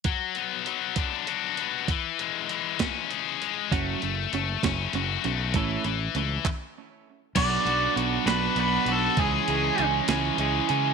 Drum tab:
CC |------|------|------|------|
HH |xxxxxx|xxxxxx|xxxxxx|xxx---|
CP |------|------|------|---x--|
SD |------|---o--|---o--|------|
BD |o--o--|o--o--|o--o--|o--o--|

CC |x-----|------|
HH |xxxxxx|xxxxxx|
CP |------|------|
SD |---o--|---o--|
BD |o-----|o-----|